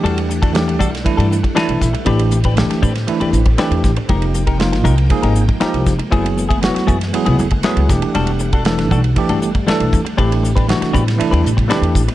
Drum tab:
RD |xx-xxx-xxx-xxx-x|xx-xxx-xxx-xxx-x|xx-xxx-xxx-xxx-x|xx-xxx-xxx-xxx-x|
HH |--p---p---p---p-|--p---p---p---p-|--p---p---p---p-|--p---p---p---p-|
SD |----o--o----o-o-|----oo-o----o-o-|----oo------o-o-|----oo-o----o-o-|
BD |---o--o-o--o--o-|o--o--o----o--o-|o--o--o-o--o--o-|o--o--o----o--o-|

RD |xx-xxx-xxx-xxx-x|xx-xxx-xxx-xxx-x|
HH |--p---p---p---p-|--p---p---p---p-|
SD |----oo------o---|----oo-o----o---|
BD |---o--o-o--o--o-|o--o--o----o--o-|